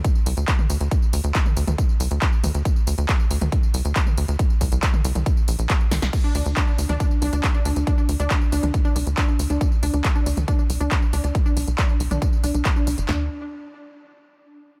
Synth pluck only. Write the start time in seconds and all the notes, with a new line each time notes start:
6.24 D4
6.35 D4
6.57 D4
6.67 D4
6.89 D4
7.00 D4
7.22 D4
7.33 D4
7.54 D4
7.65 D4
7.87 D4
7.98 D4
8.20 D4
8.31 D4
8.52 D4
8.63 D4
8.85 D4
8.96 D4
9.17 D4
9.28 D4
9.50 D4
9.61 D4
9.83 D4
9.94 D4
10.15 D4
10.26 D4
10.48 D4
10.59 D4
10.81 D4
10.91 D4
11.13 D4
11.24 D4
11.46 D4
11.57 D4
11.78 D4
11.89 D4
12.11 D4
12.22 D4
12.44 D4
12.54 D4
12.76 D4
12.87 D4
13.09 D4